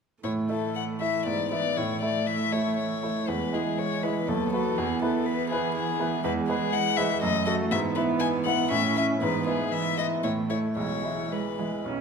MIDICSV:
0, 0, Header, 1, 5, 480
1, 0, Start_track
1, 0, Key_signature, 3, "major"
1, 0, Tempo, 506757
1, 227, Time_signature, 3, 2, 24, 8
1, 3584, Tempo, 490998
1, 5991, Key_signature, 4, "major"
1, 7904, Tempo, 504202
1, 9344, Tempo, 535236
1, 11400, End_track
2, 0, Start_track
2, 0, Title_t, "Violin"
2, 0, Program_c, 0, 40
2, 225, Note_on_c, 0, 73, 47
2, 301, Note_off_c, 0, 73, 0
2, 474, Note_on_c, 0, 69, 45
2, 711, Note_off_c, 0, 69, 0
2, 715, Note_on_c, 0, 78, 53
2, 791, Note_off_c, 0, 78, 0
2, 950, Note_on_c, 0, 76, 45
2, 1184, Note_off_c, 0, 76, 0
2, 1190, Note_on_c, 0, 74, 52
2, 1428, Note_off_c, 0, 74, 0
2, 1438, Note_on_c, 0, 74, 57
2, 1675, Note_on_c, 0, 73, 53
2, 1689, Note_off_c, 0, 74, 0
2, 1903, Note_off_c, 0, 73, 0
2, 1909, Note_on_c, 0, 74, 52
2, 2144, Note_on_c, 0, 76, 58
2, 2158, Note_off_c, 0, 74, 0
2, 2386, Note_on_c, 0, 73, 57
2, 2400, Note_off_c, 0, 76, 0
2, 2615, Note_off_c, 0, 73, 0
2, 2621, Note_on_c, 0, 73, 55
2, 3111, Note_on_c, 0, 71, 61
2, 3126, Note_off_c, 0, 73, 0
2, 3348, Note_on_c, 0, 68, 51
2, 3362, Note_off_c, 0, 71, 0
2, 3582, Note_on_c, 0, 73, 63
2, 3597, Note_off_c, 0, 68, 0
2, 3820, Note_on_c, 0, 71, 55
2, 3834, Note_off_c, 0, 73, 0
2, 4068, Note_on_c, 0, 69, 61
2, 4083, Note_off_c, 0, 71, 0
2, 4303, Note_off_c, 0, 69, 0
2, 4309, Note_on_c, 0, 69, 60
2, 4554, Note_on_c, 0, 68, 64
2, 4568, Note_off_c, 0, 69, 0
2, 4791, Note_off_c, 0, 68, 0
2, 4797, Note_on_c, 0, 69, 56
2, 5024, Note_on_c, 0, 71, 66
2, 5039, Note_off_c, 0, 69, 0
2, 5257, Note_off_c, 0, 71, 0
2, 5263, Note_on_c, 0, 68, 68
2, 5497, Note_off_c, 0, 68, 0
2, 5503, Note_on_c, 0, 68, 64
2, 5975, Note_off_c, 0, 68, 0
2, 5987, Note_on_c, 0, 71, 64
2, 6066, Note_off_c, 0, 71, 0
2, 6213, Note_on_c, 0, 68, 68
2, 6461, Note_on_c, 0, 78, 82
2, 6475, Note_off_c, 0, 68, 0
2, 6696, Note_on_c, 0, 76, 71
2, 6710, Note_off_c, 0, 78, 0
2, 6938, Note_off_c, 0, 76, 0
2, 6947, Note_on_c, 0, 75, 77
2, 7173, Note_off_c, 0, 75, 0
2, 7179, Note_on_c, 0, 75, 73
2, 7257, Note_off_c, 0, 75, 0
2, 7424, Note_on_c, 0, 76, 77
2, 7502, Note_off_c, 0, 76, 0
2, 7659, Note_on_c, 0, 71, 62
2, 7738, Note_off_c, 0, 71, 0
2, 7897, Note_on_c, 0, 80, 75
2, 7973, Note_off_c, 0, 80, 0
2, 8139, Note_on_c, 0, 78, 74
2, 8376, Note_off_c, 0, 78, 0
2, 8388, Note_on_c, 0, 76, 76
2, 8622, Note_off_c, 0, 76, 0
2, 8636, Note_on_c, 0, 76, 66
2, 8712, Note_off_c, 0, 76, 0
2, 8867, Note_on_c, 0, 71, 68
2, 9100, Note_off_c, 0, 71, 0
2, 9107, Note_on_c, 0, 68, 57
2, 9347, Note_on_c, 0, 76, 70
2, 9360, Note_off_c, 0, 68, 0
2, 9576, Note_off_c, 0, 76, 0
2, 9581, Note_on_c, 0, 75, 55
2, 9653, Note_off_c, 0, 75, 0
2, 9809, Note_on_c, 0, 73, 51
2, 9880, Note_off_c, 0, 73, 0
2, 10046, Note_on_c, 0, 73, 50
2, 10118, Note_off_c, 0, 73, 0
2, 10294, Note_on_c, 0, 73, 53
2, 10782, Note_on_c, 0, 71, 42
2, 10795, Note_off_c, 0, 73, 0
2, 11264, Note_off_c, 0, 71, 0
2, 11400, End_track
3, 0, Start_track
3, 0, Title_t, "Grand piano"
3, 0, Program_c, 1, 0
3, 222, Note_on_c, 1, 45, 46
3, 412, Control_c, 1, 64, 127
3, 461, Note_off_c, 1, 45, 0
3, 463, Note_on_c, 1, 57, 31
3, 468, Note_on_c, 1, 64, 34
3, 470, Note_on_c, 1, 76, 37
3, 913, Note_off_c, 1, 57, 0
3, 916, Note_off_c, 1, 64, 0
3, 917, Note_off_c, 1, 76, 0
3, 949, Note_on_c, 1, 57, 28
3, 953, Note_on_c, 1, 64, 29
3, 959, Note_on_c, 1, 76, 33
3, 1168, Note_off_c, 1, 57, 0
3, 1170, Note_off_c, 1, 64, 0
3, 1173, Note_off_c, 1, 76, 0
3, 1193, Note_on_c, 1, 44, 42
3, 1213, Control_c, 1, 64, 0
3, 1359, Control_c, 1, 64, 127
3, 1428, Note_off_c, 1, 44, 0
3, 1432, Note_on_c, 1, 59, 31
3, 1438, Note_on_c, 1, 64, 29
3, 1441, Note_on_c, 1, 76, 35
3, 1649, Note_off_c, 1, 59, 0
3, 1652, Note_off_c, 1, 64, 0
3, 1654, Note_off_c, 1, 76, 0
3, 1677, Note_on_c, 1, 45, 48
3, 1691, Control_c, 1, 64, 0
3, 1856, Control_c, 1, 64, 127
3, 1906, Note_off_c, 1, 45, 0
3, 1915, Note_on_c, 1, 57, 33
3, 1917, Note_on_c, 1, 64, 30
3, 1923, Note_on_c, 1, 76, 31
3, 2354, Note_off_c, 1, 57, 0
3, 2355, Note_off_c, 1, 64, 0
3, 2358, Note_off_c, 1, 76, 0
3, 2387, Note_on_c, 1, 57, 35
3, 2394, Note_on_c, 1, 64, 32
3, 2398, Note_on_c, 1, 76, 35
3, 2830, Note_off_c, 1, 57, 0
3, 2834, Note_off_c, 1, 64, 0
3, 2836, Note_off_c, 1, 76, 0
3, 2868, Note_on_c, 1, 57, 34
3, 2872, Note_on_c, 1, 64, 33
3, 2874, Note_on_c, 1, 76, 35
3, 3083, Note_off_c, 1, 57, 0
3, 3085, Note_off_c, 1, 64, 0
3, 3086, Note_off_c, 1, 76, 0
3, 3106, Note_on_c, 1, 40, 52
3, 3127, Control_c, 1, 64, 0
3, 3273, Control_c, 1, 64, 127
3, 3338, Note_off_c, 1, 40, 0
3, 3339, Note_on_c, 1, 56, 35
3, 3344, Note_on_c, 1, 64, 36
3, 3347, Note_on_c, 1, 76, 38
3, 3787, Note_off_c, 1, 56, 0
3, 3790, Note_off_c, 1, 64, 0
3, 3791, Note_off_c, 1, 76, 0
3, 3824, Note_on_c, 1, 56, 37
3, 3831, Note_on_c, 1, 64, 40
3, 3832, Note_on_c, 1, 76, 42
3, 4045, Note_off_c, 1, 56, 0
3, 4049, Note_off_c, 1, 64, 0
3, 4050, Note_off_c, 1, 76, 0
3, 4070, Note_on_c, 1, 39, 50
3, 4092, Control_c, 1, 64, 0
3, 4225, Control_c, 1, 64, 127
3, 4307, Note_off_c, 1, 39, 0
3, 4315, Note_on_c, 1, 59, 37
3, 4318, Note_on_c, 1, 66, 35
3, 4323, Note_on_c, 1, 71, 39
3, 4532, Note_off_c, 1, 59, 0
3, 4534, Note_off_c, 1, 66, 0
3, 4537, Note_off_c, 1, 71, 0
3, 4556, Note_on_c, 1, 40, 59
3, 4576, Control_c, 1, 64, 0
3, 4741, Control_c, 1, 64, 127
3, 4788, Note_off_c, 1, 40, 0
3, 4789, Note_on_c, 1, 59, 40
3, 4794, Note_on_c, 1, 64, 43
3, 4801, Note_on_c, 1, 71, 42
3, 5233, Note_off_c, 1, 59, 0
3, 5235, Note_off_c, 1, 64, 0
3, 5239, Note_off_c, 1, 71, 0
3, 5274, Note_on_c, 1, 59, 39
3, 5276, Note_on_c, 1, 64, 36
3, 5281, Note_on_c, 1, 71, 45
3, 5714, Note_off_c, 1, 59, 0
3, 5715, Note_off_c, 1, 64, 0
3, 5717, Note_off_c, 1, 71, 0
3, 5748, Note_on_c, 1, 59, 45
3, 5754, Note_on_c, 1, 64, 38
3, 5757, Note_on_c, 1, 71, 42
3, 5964, Note_off_c, 1, 59, 0
3, 5967, Note_off_c, 1, 64, 0
3, 5969, Note_off_c, 1, 71, 0
3, 5986, Note_on_c, 1, 40, 65
3, 6008, Control_c, 1, 64, 0
3, 6181, Control_c, 1, 64, 127
3, 6217, Note_off_c, 1, 40, 0
3, 6227, Note_on_c, 1, 56, 44
3, 6232, Note_on_c, 1, 68, 48
3, 6234, Note_on_c, 1, 71, 48
3, 6662, Note_off_c, 1, 56, 0
3, 6664, Note_off_c, 1, 68, 0
3, 6665, Note_off_c, 1, 71, 0
3, 6701, Note_on_c, 1, 56, 42
3, 6702, Note_on_c, 1, 68, 42
3, 6709, Note_on_c, 1, 71, 48
3, 6917, Note_off_c, 1, 56, 0
3, 6917, Note_off_c, 1, 68, 0
3, 6921, Note_off_c, 1, 71, 0
3, 6943, Note_on_c, 1, 42, 54
3, 6961, Control_c, 1, 64, 0
3, 7133, Control_c, 1, 64, 127
3, 7176, Note_off_c, 1, 42, 0
3, 7181, Note_on_c, 1, 57, 42
3, 7182, Note_on_c, 1, 66, 45
3, 7189, Note_on_c, 1, 69, 50
3, 7399, Note_off_c, 1, 57, 0
3, 7399, Note_off_c, 1, 66, 0
3, 7403, Note_off_c, 1, 69, 0
3, 7424, Note_on_c, 1, 44, 64
3, 7442, Control_c, 1, 64, 0
3, 7595, Control_c, 1, 64, 127
3, 7657, Note_off_c, 1, 44, 0
3, 7667, Note_on_c, 1, 59, 48
3, 7673, Note_on_c, 1, 64, 47
3, 7676, Note_on_c, 1, 76, 52
3, 8107, Note_off_c, 1, 59, 0
3, 8110, Note_off_c, 1, 64, 0
3, 8112, Note_off_c, 1, 76, 0
3, 8146, Note_on_c, 1, 59, 45
3, 8154, Note_on_c, 1, 64, 42
3, 8157, Note_on_c, 1, 76, 42
3, 8361, Note_off_c, 1, 59, 0
3, 8366, Note_off_c, 1, 64, 0
3, 8367, Note_off_c, 1, 76, 0
3, 8385, Note_on_c, 1, 45, 61
3, 8403, Control_c, 1, 64, 0
3, 8577, Control_c, 1, 64, 127
3, 8618, Note_off_c, 1, 45, 0
3, 8627, Note_on_c, 1, 61, 42
3, 8628, Note_on_c, 1, 64, 39
3, 8636, Note_on_c, 1, 76, 42
3, 8841, Note_off_c, 1, 61, 0
3, 8842, Note_off_c, 1, 64, 0
3, 8846, Note_off_c, 1, 76, 0
3, 8868, Note_on_c, 1, 44, 60
3, 8882, Control_c, 1, 64, 0
3, 9037, Control_c, 1, 64, 127
3, 9098, Note_off_c, 1, 44, 0
3, 9103, Note_on_c, 1, 59, 37
3, 9105, Note_on_c, 1, 64, 38
3, 9109, Note_on_c, 1, 76, 44
3, 9539, Note_off_c, 1, 59, 0
3, 9541, Note_off_c, 1, 64, 0
3, 9542, Note_off_c, 1, 76, 0
3, 9578, Note_on_c, 1, 59, 30
3, 9582, Note_on_c, 1, 64, 34
3, 9586, Note_on_c, 1, 76, 34
3, 9787, Note_off_c, 1, 59, 0
3, 9790, Note_off_c, 1, 64, 0
3, 9791, Note_off_c, 1, 76, 0
3, 9812, Note_on_c, 1, 45, 47
3, 9829, Control_c, 1, 64, 0
3, 9995, Control_c, 1, 64, 127
3, 10038, Note_on_c, 1, 57, 32
3, 10041, Note_off_c, 1, 45, 0
3, 10044, Note_on_c, 1, 64, 30
3, 10047, Note_on_c, 1, 76, 34
3, 10262, Note_off_c, 1, 57, 0
3, 10265, Note_off_c, 1, 64, 0
3, 10266, Note_off_c, 1, 76, 0
3, 10284, Note_on_c, 1, 35, 46
3, 10310, Control_c, 1, 64, 0
3, 10443, Control_c, 1, 64, 127
3, 10527, Note_off_c, 1, 35, 0
3, 10529, Note_on_c, 1, 56, 29
3, 10536, Note_on_c, 1, 64, 30
3, 10536, Note_on_c, 1, 76, 32
3, 10984, Note_off_c, 1, 56, 0
3, 10987, Note_off_c, 1, 64, 0
3, 10987, Note_off_c, 1, 76, 0
3, 11020, Note_on_c, 1, 56, 29
3, 11023, Note_on_c, 1, 64, 29
3, 11027, Note_on_c, 1, 76, 28
3, 11238, Note_off_c, 1, 56, 0
3, 11240, Note_off_c, 1, 64, 0
3, 11242, Note_off_c, 1, 76, 0
3, 11262, Note_on_c, 1, 35, 39
3, 11283, Control_c, 1, 64, 0
3, 11400, Note_off_c, 1, 35, 0
3, 11400, End_track
4, 0, Start_track
4, 0, Title_t, "Viola"
4, 0, Program_c, 2, 41
4, 226, Note_on_c, 2, 57, 47
4, 1189, Note_on_c, 2, 59, 37
4, 1203, Note_off_c, 2, 57, 0
4, 1674, Note_on_c, 2, 57, 50
4, 1689, Note_off_c, 2, 59, 0
4, 3104, Note_on_c, 2, 56, 48
4, 3118, Note_off_c, 2, 57, 0
4, 4068, Note_off_c, 2, 56, 0
4, 4073, Note_on_c, 2, 59, 55
4, 5952, Note_off_c, 2, 59, 0
4, 5993, Note_on_c, 2, 56, 66
4, 6941, Note_on_c, 2, 57, 53
4, 6955, Note_off_c, 2, 56, 0
4, 7418, Note_on_c, 2, 59, 67
4, 7433, Note_off_c, 2, 57, 0
4, 8383, Note_on_c, 2, 61, 56
4, 8398, Note_off_c, 2, 59, 0
4, 8855, Note_off_c, 2, 61, 0
4, 8861, Note_on_c, 2, 59, 59
4, 9309, Note_off_c, 2, 59, 0
4, 9346, Note_on_c, 2, 59, 48
4, 9808, Note_on_c, 2, 57, 46
4, 9822, Note_off_c, 2, 59, 0
4, 10287, Note_on_c, 2, 56, 42
4, 10301, Note_off_c, 2, 57, 0
4, 10769, Note_off_c, 2, 56, 0
4, 10775, Note_on_c, 2, 56, 38
4, 11260, Note_on_c, 2, 54, 34
4, 11274, Note_off_c, 2, 56, 0
4, 11400, Note_off_c, 2, 54, 0
4, 11400, End_track
5, 0, Start_track
5, 0, Title_t, "Cello"
5, 0, Program_c, 3, 42
5, 222, Note_on_c, 3, 52, 41
5, 3067, Note_off_c, 3, 52, 0
5, 3102, Note_on_c, 3, 52, 42
5, 4068, Note_on_c, 3, 54, 47
5, 4083, Note_off_c, 3, 52, 0
5, 4548, Note_off_c, 3, 54, 0
5, 4554, Note_on_c, 3, 52, 50
5, 6945, Note_on_c, 3, 54, 57
5, 6960, Note_off_c, 3, 52, 0
5, 7419, Note_off_c, 3, 54, 0
5, 7425, Note_on_c, 3, 52, 57
5, 8836, Note_off_c, 3, 52, 0
5, 8867, Note_on_c, 3, 52, 48
5, 9313, Note_off_c, 3, 52, 0
5, 9347, Note_on_c, 3, 52, 53
5, 9801, Note_off_c, 3, 52, 0
5, 9806, Note_on_c, 3, 52, 41
5, 10279, Note_off_c, 3, 52, 0
5, 10293, Note_on_c, 3, 52, 36
5, 10770, Note_off_c, 3, 52, 0
5, 10776, Note_on_c, 3, 56, 47
5, 10848, Note_off_c, 3, 56, 0
5, 11020, Note_on_c, 3, 52, 36
5, 11092, Note_off_c, 3, 52, 0
5, 11261, Note_on_c, 3, 61, 50
5, 11400, Note_off_c, 3, 61, 0
5, 11400, End_track
0, 0, End_of_file